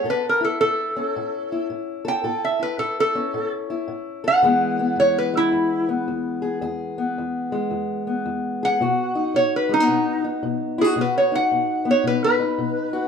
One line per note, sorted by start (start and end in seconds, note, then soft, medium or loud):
0.04 0.55 A2 medium
0.04 2.04 A4 medium
0.10 0.25 B4 medium
0.29 0.44 A#4 medium
0.41 1.52 E4 medium
0.45 0.59 A4 medium
0.61 1.11 A2 medium
0.61 1.66 A4 medium
0.96 2.22 C#4 medium
1.16 1.66 A2 medium
1.52 2.59 E4 medium
1.70 2.20 A2 medium
2.05 2.22 A4 medium
2.05 2.42 G5 medium
2.24 2.75 A2 medium
2.24 4.23 A4 medium
2.45 2.61 E5 medium
2.59 3.70 E4 medium
2.59 2.79 B4 medium
2.78 3.29 A2 medium
2.78 2.97 A4 medium
3.00 3.52 A4 medium
3.15 4.41 C#4 medium
3.34 3.84 A2 medium
3.70 4.44 E4 medium
3.88 4.39 A2 medium
4.24 4.41 A4 medium
4.24 4.97 F#5 medium
4.42 4.93 E2 medium
4.42 8.79 E3 medium
4.42 5.33 G#3 medium
4.42 4.79 B3 medium
4.42 6.41 G#4 medium
4.79 5.88 B3 medium
4.96 5.48 E2 medium
4.96 5.16 C#5 medium
5.18 5.35 B4 medium
5.34 7.51 G#3 medium
5.34 5.89 E4 medium
5.52 6.03 E2 medium
5.89 6.98 B3 medium
6.08 6.58 E2 medium
6.42 6.59 G#4 medium
6.61 7.12 E2 medium
6.61 8.60 G#4 medium
6.98 8.07 B3 medium
7.18 7.68 E2 medium
7.52 8.80 G#3 medium
7.71 8.21 E2 medium
8.07 9.15 B3 soft
8.26 8.76 E2 medium
8.63 8.79 G#4 medium
8.63 9.34 F#5 medium
8.81 9.31 B2 medium
8.81 10.78 F#4 medium
9.15 10.23 D#4 medium
9.34 9.85 B2 medium
9.34 9.53 C#5 medium
9.56 9.72 B4 medium
9.69 9.80 G#3 medium
9.74 10.25 D#4 medium
9.80 10.98 B3 medium
9.88 10.39 B2 medium
10.24 10.95 D#4 medium
10.43 10.93 B2 medium
10.78 10.84 E4 medium
10.78 10.98 G#4 medium
10.84 10.96 F#4 soft
10.96 11.47 B2 medium
10.96 12.92 F#4 medium
11.01 11.17 B4 medium
11.18 11.34 C#5 medium
11.32 12.39 D#4 medium
11.32 11.87 F#5 medium
11.52 12.02 B2 medium
11.85 13.08 B3 medium
11.91 12.07 C#5 medium
12.04 12.55 B2 medium
12.04 12.23 B4 medium
12.24 13.08 B4 medium
12.40 13.08 D#4 medium
12.58 13.08 B2 medium
12.93 13.08 F#4 medium